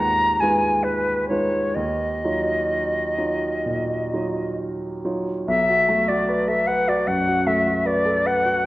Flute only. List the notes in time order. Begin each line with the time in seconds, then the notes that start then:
0.00 A#5
0.40 G#5
0.83 B4
1.28 C#5
1.74 D#5
5.48 E5
6.08 D5
6.48 E5
6.67 F#5
6.88 D5
7.07 F#5
7.47 E5
7.86 D5
8.26 F#5